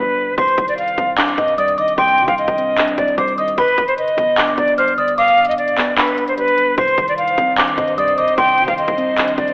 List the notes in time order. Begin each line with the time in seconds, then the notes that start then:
Already playing: G1 G2 D3 G3 B3 D4 B4 B5
0.17 D3
0.28 F1
0.38 C2 C3 C5 C6, kick, closed hi-hat
0.48 closed hi-hat
0.58 C2 D#3, kick, closed hi-hat
0.68 D5, closed hi-hat
0.78 F5, closed hi-hat
0.88 closed hi-hat
0.98 C2 C4, kick, closed hi-hat
1.18 D4 D6, clap, closed hi-hat
1.28 closed hi-hat
1.37 G2 C4 D#5, kick, closed hi-hat
1.48 closed hi-hat
1.57 G3 D5 D#6, closed hi-hat
1.68 closed hi-hat
1.78 D#3 D#5 D6, closed hi-hat
1.88 closed hi-hat
1.97 C2 C3 G5 C6, kick, closed hi-hat
2.08 closed hi-hat
2.17 C3 D#3, closed hi-hat
2.28 C2 F5, kick, closed hi-hat
2.38 D#5, closed hi-hat
2.48 C2, kick, closed hi-hat
2.58 C4, closed hi-hat
2.78 D4, clap, closed hi-hat
2.88 closed hi-hat
2.97 C2 C4 D5, kick, closed hi-hat
3.08 closed hi-hat
3.17 C2 G3 C5 D6, kick, closed hi-hat
3.28 closed hi-hat
3.38 D#3 D#5 D#6, closed hi-hat
3.48 closed hi-hat
3.58 G1 G2 B4 B5, kick, closed hi-hat
3.68 closed hi-hat
3.77 G1 D3, kick, closed hi-hat
3.87 C5, closed hi-hat
3.98 D#5, closed hi-hat
4.08 closed hi-hat
4.17 G1 B3, kick, closed hi-hat
4.38 D4 D6, clap, closed hi-hat
4.48 closed hi-hat
4.57 G1 B3 D5, kick, closed hi-hat
4.68 closed hi-hat
4.78 G3 C5 F6, closed hi-hat
4.88 closed hi-hat
4.97 D3 D5 D#6, closed hi-hat
5.08 closed hi-hat
5.17 G2 F5 D6, closed hi-hat
5.28 closed hi-hat
5.38 D3, closed hi-hat
5.45 D#5, closed hi-hat
5.51 closed hi-hat
5.58 D5, closed hi-hat
5.68 closed hi-hat
5.78 B3, clap, open hi-hat
5.98 D4 B4 B5, clap, closed hi-hat
6.08 closed hi-hat
6.17 B3, closed hi-hat
6.28 C5, closed hi-hat
6.37 G3 B4, closed hi-hat
6.48 closed hi-hat
6.57 D3, closed hi-hat
6.78 C2 C3 D#3 C5 C6, kick, closed hi-hat
6.88 closed hi-hat
6.98 C2 D#3, kick, closed hi-hat
7.08 D5, closed hi-hat
7.17 F5, closed hi-hat
7.28 closed hi-hat
7.38 C2 C4, kick, closed hi-hat
7.58 D4 D6, clap, closed hi-hat
7.68 closed hi-hat
7.77 G2 C4 D#5, kick, closed hi-hat
7.88 closed hi-hat
7.97 G3 D5 D#6, closed hi-hat
8.08 closed hi-hat
8.18 D#3 D#5 D6, closed hi-hat
8.28 closed hi-hat
8.37 C2 C3 G5 C6, kick, closed hi-hat
8.48 closed hi-hat
8.57 C3 D#3, closed hi-hat
8.68 C2 F5, kick, closed hi-hat
8.78 D#5, closed hi-hat
8.88 C2, kick, closed hi-hat
8.98 C4, closed hi-hat
9.18 D4, clap, closed hi-hat
9.28 closed hi-hat
9.38 C2 C4 D5, kick, closed hi-hat
9.48 closed hi-hat